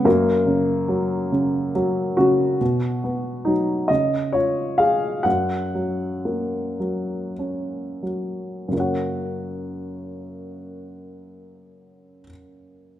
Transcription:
grand piano
0.05 F#2 A#3
0.47 C#3
0.88 F#3
1.32 C#3
1.75 F#3
2.17 C#3 F#4
2.61 B2
3.04 B3
3.45 F#3 D#4
3.88 C#3 D#5
4.33 F4 C#5
4.78 G#4 F5
5.23 F#2 F#5
5.75 F#3
6.25 A#3
6.80 F#3
7.39 C#4
8.03 F#3
8.68 F#2 C#3
8.73 A#3 F#4
8.77 C#5 F#5

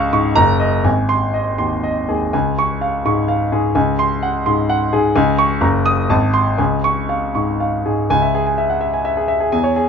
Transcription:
grand piano
Already playing: C#2 F5 G#5 C#6
0.13 G#2 C#6
0.36 F#1 A#5
0.60 D#5
0.84 G#1 G#5
1.09 C6
1.34 D#5
1.58 D#2 C6
1.83 D#5
2.09 D#2 G#4
2.33 C#2 G#5
2.59 C#6
2.81 F5
3.05 G#2 C#6
3.28 F5
3.52 G#2 G#4
3.75 C#2 G#5
3.99 C6
4.23 F#5
4.46 G#2 C6
4.69 F#5
4.93 G#2 G#4
5.15 C#2 G#5
5.38 C#6
5.61 F#1 A#5
5.86 D#6
6.10 G#1 A5
6.34 C6
6.58 C#2 G#5
6.84 C#6
7.09 F5
7.35 G#2 C#6
7.60 F5
7.85 G#2 G#4
8.10 C#2 G#5
8.22 E5
8.35 G#4
8.47 G#5
8.58 E5
8.70 F#5
8.81 E5
8.93 G#5
9.05 E5
9.17 G#4
9.28 E5
9.40 G#4
9.52 E2 G#5
9.64 C#5
9.76 G#4

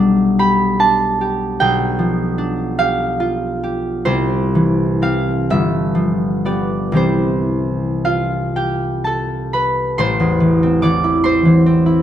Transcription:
harp
Already playing: B1 G3 D4 G4 D5
0.39 G4 B5
0.79 D4 A5
1.21 G4
1.60 B1 G5
1.99 F3
2.38 D4
2.79 G4 F5
3.20 F4
3.63 G4
4.05 C2 C5
4.55 E3
5.02 C4 G4 F5
5.50 G1 E5
5.95 F3
6.45 B3 G4 D5
6.92 C2 E3 C4 G4
6.96 C5
8.05 F4 F5
8.56 G4 G5
9.04 A4 A5
9.53 B4 B5
9.98 A1 C5 C6
10.20 E2
10.40 E3
10.63 C4
10.82 E3 D5 D6
11.04 E4
11.24 C4 C5 C6
11.45 E3
11.66 C4
11.86 E4

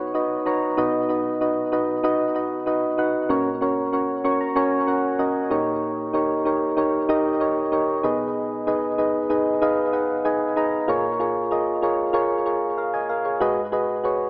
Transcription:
synth keys
Already playing: B1 B2 D#4 F#4 B4 C#5 D#5
0.14 D#4 F#4 B4 D#5
0.46 D#4 F#4 B4 C#5 A#5
0.77 B1 B2 D#4 F#4 B4 D#5
1.09 D#4 F#4 B4 D#5
1.41 D#4 F#4 B4 D#5
1.72 D#4 F#4 B4 D#5
2.03 D#4 F#4 B4 D#5
2.35 D#4 F#4 B4 D#5
2.66 D#4 F#4 B4 D#5
2.98 D#4 F#4 B4 F#5
3.29 A#1 A#2 C#4 F#4 A#4 C#5
3.61 C#4 F#4 A#4 C#5
3.92 C#4 F#4 A#4 C#5
4.24 C#4 F#4 A#4 C#5 C#6
4.41 A#5
4.55 C#4 F#4 A#4 C#5 G#5
4.87 C#4 F#4 A#4 C#5 F#5
5.19 C#4 F#4 A#4 D#5
5.50 A#1 A#2 D#4 G4 A#4 C#5 D#5
6.13 D#4 G4 A#4 C#5
6.45 D#4 G4 A#4 C#5
6.77 D#4 G4 A#4 C#5
7.09 D#4 G4 A#4 D#5
7.40 D#4 G4 A#4 C#5
7.72 D#4 G4 A#4 C#5
8.03 B1 B2 D#4 G#4 B4 D#5
8.67 D#4 G#4 B4 D#5
8.98 D#4 G#4 B4 D#5
9.30 D#4 G#4 B4 D#5
9.62 D#4 G#4 B4 D#5 F5
9.93 D#4 G#4 B4 D#5 F#5
10.25 D#4 G#4 B4 D#5 G#5
10.56 D#4 G#4 B4 D#5 A#5
10.88 A#1 A#2 F4 G#4 A#4 C#5
11.20 F4 G#4 A#4 C#5
11.51 F4 G#4 A#4 D#5
11.82 F4 G#4 A#4 C#5
12.13 F4 G#4 A#4 C#5
12.45 F4 G#4 A#4 C#5
12.78 A#4 F5
12.94 D#5 G#5
13.09 A#4 F5
13.25 G#4 C#5
13.40 G#2 F#4 G#4 B4 D#5
13.72 F#4 G#4 B4 D#5
14.04 F#4 G#4 B4 C#5

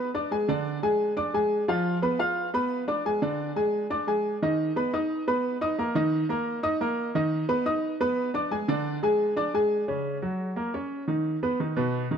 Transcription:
upright piano
0.14 D4 D5 D6
0.31 G#3 G#4 G#5
0.48 D3 D4 D5
0.83 G#3 G#4 G#5
1.17 D4 D5 D6
1.34 G#3 G#4 G#5
1.68 F3 F4 F5
2.02 B3 B4 B5
2.19 F4 F5 F6
2.54 B3 B4 B5
2.88 D4 D5 D6
3.05 G#3 G#4 G#5
3.22 D3 D4 D5
3.56 G#3 G#4 G#5
3.90 D4 D5 D6
4.07 G#3 G#4 G#5
4.42 D#3 D#4 D#5
4.76 B3 B4 B5
4.93 D#4 D#5 D#6
5.28 B3 B4 B5
5.61 D#4 D#5 D#6
5.79 A#3 A#4 A#5
5.95 D#3 D#4 D#5
6.29 A#3 A#4 A#5
6.63 D#4 D#5 D#6
6.81 A#3 A#4 A#5
7.15 D#3 D#4 D#5
7.49 B3 B4 B5
7.66 D#4 D#5 D#6
8.00 B3 B4 B5
8.34 D4 D5 D6
8.51 G#3 G#4 G#5
8.68 D3 D4 D5
9.03 G#3 G#4 G#5
9.36 D4 D5 D6
9.54 G#3 G#4 G#5
9.88 C#3 C#4
10.22 F#3 F#4
10.56 A#3 A#4
10.74 C#4 C#5
11.08 D#3 D#4
11.43 B3 B4
11.60 D#3 D#4
11.76 B2 B3
12.11 D#3 D#4

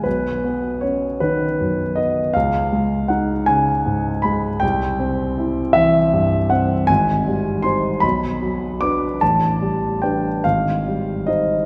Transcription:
grand piano
0.04 B1 B4
0.44 B3
0.81 C#4 C#5
1.20 D#3 B4
1.60 F#2
1.96 B3 D#5
2.34 C#2 F5
2.72 G#3
3.08 D#4 F#5
3.46 C#3 G#5
3.86 G#2
4.22 G#3 B5
4.60 C2 G5
4.99 C4
5.38 E4
5.73 E3 E5
6.13 G2
6.50 C4 F#5
6.87 G#1 G#5
7.27 G3
7.62 D#4 C5 C6
8.00 B1 B5
8.42 F#3
8.81 D4 B4 D6
9.21 A1 A5
9.62 G3
10.02 D4 B4 G5
10.44 G#1 F5
10.87 G3
11.27 D#4 C5 D#5

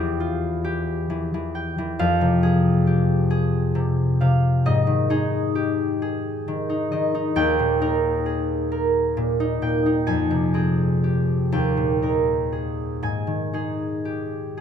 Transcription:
harp
Already playing: E2 E3 G4 G5
0.20 F4
0.64 G4
1.10 E3
1.34 E3
1.55 G5
1.78 E3
1.99 F2 F5
2.21 C3
2.43 G#4
2.87 G4
3.31 G#4
3.75 C3
4.21 C3 F5
4.66 G#2 D#5
4.87 D#3
5.10 D#4 G#4
5.55 G4
6.02 G#4
6.48 D#3
6.70 D#4
6.92 D#3 D#5
7.15 D#4
7.36 D#2 G5
7.59 A#2
7.81 D#4 A#4
8.26 G#4
8.72 A#4
9.17 A#2
9.40 D#4
9.62 A#2 G5
9.86 D#4
10.07 F2 G#5
10.31 C3
10.54 C4 G#4
11.04 G4
11.52 D#2 G5
11.77 A#2
12.02 D#4 A#4
12.52 G#4
13.03 G#2 G#5
13.27 D#3
13.53 D#4 G#4
14.05 G4
14.57 G#4

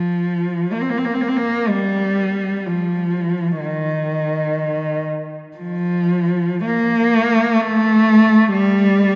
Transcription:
cello
Already playing: F3
0.72 A#3
0.82 C4
0.90 A#3
0.98 C4
1.05 A#3
1.14 C4
1.21 A#3
1.28 C4
1.37 A#3
1.70 G3
2.66 F3
3.61 D#3
5.57 F3
6.65 A#3
7.61 A3
8.52 G3

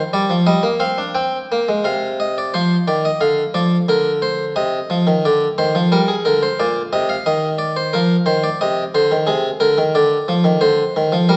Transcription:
harpsichord
0.13 G3 D5
0.30 F3
0.47 G3 D#5
0.63 A#3
0.80 C4 F5
0.98 D4
1.15 C4 G5
1.52 A#3
1.69 G#3
1.84 C3 F5
2.20 D#5
2.38 D5
2.54 F3 C5
2.88 D#3 D5
3.05 D#5
3.21 D3 F5
3.54 F3 D5
3.89 D3 A#4
4.22 C5
4.56 C3 D#5
4.90 F3
5.07 D#3
5.25 D3 D5
5.58 D#3 C5
5.75 F3
5.92 G3 A#4
6.08 G#4
6.25 D3 A#4
6.43 C5
6.60 A#2 D5
6.93 C3 D#5
7.09 F5
7.26 D#3 D#5
7.58 D5
7.76 C5
7.93 F3 A#4
8.26 D#3 C5
8.44 D5
8.61 C3 D#5
8.95 D3 C5
9.11 D#3
9.27 C3 G#4
9.60 D3 A#4
9.78 D#3
9.95 D3 D5
10.28 F3
10.44 D#3
10.61 D3 C5
10.96 D#3
11.12 F3
11.29 G3 A#4

